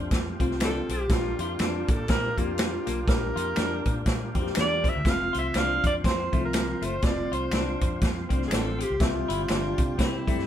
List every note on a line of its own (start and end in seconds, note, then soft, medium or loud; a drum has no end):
0.00 1.05 A3 medium
0.00 1.06 C4 medium
0.00 8.95 F4 medium
0.00 1.08 G4 medium
0.11 0.34 F2 loud
0.11 kick loud
0.11 snare loud
0.11 closed hi-hat loud
0.39 0.80 C2 loud
0.39 0.91 A3 medium
0.39 0.91 C4 medium
0.39 0.53 C4 medium
0.39 0.92 F4 loud
0.39 kick medium
0.39 closed hi-hat medium
0.51 snare soft
0.60 0.80 D4 medium
0.60 finger snap loud
0.60 snare loud
0.60 closed hi-hat medium
0.65 0.95 A4 loud
0.89 1.06 B1 medium
0.89 1.04 C4 medium
0.89 closed hi-hat medium
0.93 1.14 G4 loud
1.09 1.33 A#1 loud
1.09 5.01 A#3 medium
1.09 1.83 A#3 medium
1.09 1.83 D4 medium
1.09 5.02 D4 medium
1.09 1.40 F4 loud
1.09 5.02 G4 medium
1.09 1.84 G4 medium
1.09 kick loud
1.09 snare loud
1.09 closed hi-hat medium
1.39 1.55 F2 medium
1.39 1.53 F4 medium
1.39 1.92 F4 medium
1.39 closed hi-hat medium
1.59 1.83 F2 medium
1.59 2.07 D4 medium
1.59 finger snap medium
1.59 snare loud
1.59 closed hi-hat medium
1.88 2.05 A#2 loud
1.88 2.12 A4 loud
1.88 kick loud
1.88 closed hi-hat medium
2.08 2.32 A#2 loud
2.08 2.28 C4 medium
2.08 2.40 A#4 loud
2.08 kick loud
2.08 snare loud
2.08 closed hi-hat medium
2.38 2.78 F2 loud
2.38 2.51 A#3 medium
2.38 2.90 A#3 medium
2.38 2.90 D4 medium
2.38 3.08 F4 medium
2.38 2.91 G4 medium
2.38 kick medium
2.38 closed hi-hat medium
2.58 finger snap loud
2.58 snare loud
2.58 closed hi-hat loud
2.87 3.04 B1 medium
2.87 3.00 A#3 medium
2.87 closed hi-hat medium
3.08 3.31 A#1 medium
3.08 3.81 A#3 medium
3.08 3.81 D4 medium
3.08 3.82 G4 medium
3.08 4.03 A#4 loud
3.08 kick loud
3.08 snare loud
3.08 closed hi-hat medium
3.36 3.53 F2 medium
3.36 3.49 F4 medium
3.36 closed hi-hat medium
3.56 3.80 F2 medium
3.56 4.03 D4 medium
3.56 finger snap medium
3.56 snare medium
3.56 closed hi-hat medium
3.85 4.03 A#2 medium
3.85 kick medium
3.85 closed hi-hat medium
4.06 4.29 A#2 medium
4.06 kick loud
4.06 snare loud
4.06 closed hi-hat loud
4.34 4.52 F2 loud
4.34 4.86 A#3 medium
4.34 4.48 C4 medium
4.34 4.87 D4 medium
4.34 4.41 F#4 medium
4.34 kick medium
4.34 closed hi-hat medium
4.42 4.90 G4 medium
4.46 snare soft
4.55 4.88 E2 loud
4.55 4.74 D4 medium
4.55 finger snap loud
4.55 snare medium
4.55 closed hi-hat medium
4.60 4.90 D5 loud
4.84 4.97 C4 medium
4.84 kick medium
4.84 closed hi-hat medium
4.89 5.12 E5 loud
4.96 5.04 D2 medium
5.04 5.28 F1 loud
5.04 8.97 F3 medium
5.04 5.12 G#3 medium
5.04 5.78 C4 medium
5.04 10.47 C4 medium
5.04 5.78 F4 medium
5.04 8.97 C5 medium
5.04 kick loud
5.04 snare loud
5.04 closed hi-hat medium
5.10 5.80 A3 medium
5.10 5.36 F5 loud
5.33 5.51 C2 loud
5.33 5.46 F4 medium
5.33 closed hi-hat medium
5.39 5.59 E5 medium
5.54 5.78 C2 medium
5.54 6.01 D4 medium
5.54 5.85 F5 loud
5.54 finger snap medium
5.54 snare loud
5.54 closed hi-hat medium
5.84 6.00 F2 medium
5.84 5.95 D5 loud
5.84 kick medium
5.84 closed hi-hat medium
6.04 6.27 F2 loud
6.04 6.23 C4 medium
6.04 6.41 C5 medium
6.04 kick loud
6.04 snare loud
6.04 closed hi-hat loud
6.32 6.73 C2 loud
6.32 6.84 F3 medium
6.32 6.46 A3 medium
6.32 6.84 C4 medium
6.32 6.38 E4 medium
6.32 kick medium
6.32 closed hi-hat medium
6.40 6.88 F4 medium
6.45 6.86 A#4 medium
6.53 finger snap loud
6.53 snare loud
6.53 closed hi-hat loud
6.82 6.98 F#1 medium
6.82 6.95 A3 medium
6.82 7.06 C5 medium
6.82 closed hi-hat medium
7.02 7.26 F1 medium
7.02 7.75 A3 medium
7.02 7.76 C4 medium
7.02 7.76 F4 medium
7.02 7.35 D5 loud
7.02 kick loud
7.02 snare loud
7.02 closed hi-hat medium
7.32 7.48 C2 medium
7.32 7.45 F4 medium
7.32 8.02 C5 medium
7.32 closed hi-hat medium
7.51 7.75 C2 medium
7.51 7.99 D4 medium
7.51 finger snap medium
7.51 snare loud
7.51 closed hi-hat medium
7.81 7.98 F2 medium
7.81 kick medium
7.81 closed hi-hat medium
8.01 8.25 F2 loud
8.01 kick loud
8.01 snare loud
8.01 closed hi-hat medium
8.29 8.47 C2 medium
8.29 8.81 A3 medium
8.29 8.42 C4 medium
8.29 8.82 C4 medium
8.29 8.82 D4 loud
8.29 kick medium
8.29 closed hi-hat medium
8.42 snare soft
8.48 8.82 A1 loud
8.48 8.69 D4 medium
8.48 8.55 G#4 medium
8.48 finger snap loud
8.48 closed hi-hat loud
8.53 8.84 A4 loud
8.53 snare medium
8.79 8.92 C4 medium
8.79 closed hi-hat medium
8.83 9.05 G4 loud
8.90 8.98 C2 medium
8.99 9.23 C2 loud
8.99 10.47 C3 medium
8.99 10.47 G3 medium
8.99 9.72 G3 medium
8.99 9.73 C4 medium
8.99 10.01 F4 loud
8.99 10.47 G4 medium
8.99 9.73 E5 medium
8.99 kick loud
8.99 snare loud
8.99 closed hi-hat loud
9.28 9.45 G1 medium
9.28 9.41 E4 medium
9.28 closed hi-hat medium
9.49 9.72 G1 medium
9.49 9.95 D4 medium
9.49 finger snap medium
9.49 snare loud
9.49 closed hi-hat medium
9.78 9.95 C3 loud
9.78 kick loud
9.78 closed hi-hat medium
9.98 10.30 C3 loud
9.98 10.16 C4 medium
9.98 10.47 E4 medium
9.98 kick medium
9.98 snare loud
9.98 closed hi-hat loud
10.26 10.47 G3 medium
10.26 10.40 A3 medium
10.26 10.47 C4 medium
10.26 10.47 G4 medium
10.26 kick medium
10.26 closed hi-hat medium
10.36 10.47 G2 medium
10.36 snare soft